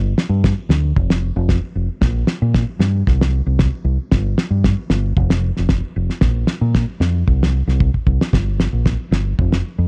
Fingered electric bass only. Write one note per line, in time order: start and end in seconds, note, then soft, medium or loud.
0.00 0.13 G1 medium
0.29 0.52 G2 medium
0.69 0.91 D2 medium
0.96 1.30 F1 medium
1.36 1.58 F1 loud
1.75 1.87 F1 medium
2.01 2.23 A#1 medium
2.42 2.64 A#2 medium
2.79 3.02 G2 medium
3.07 3.40 C2 medium
3.46 3.68 C2 medium
3.84 3.97 C2 medium
4.12 4.34 G1 medium
4.50 4.73 G2 medium
4.90 5.12 G1 medium
5.17 5.50 F1 loud
5.58 5.80 F1 medium
5.96 6.08 F1 medium
6.21 6.44 A#1 medium
6.61 6.84 A#2 medium
7.00 7.22 F2 medium
7.28 7.61 C2 medium
7.67 7.89 C2 medium
8.06 8.18 C2 medium
8.33 8.66 G1 medium
8.73 8.95 A#1 medium
9.11 9.33 G1 medium
9.39 9.60 F1 medium
9.78 9.88 F2 medium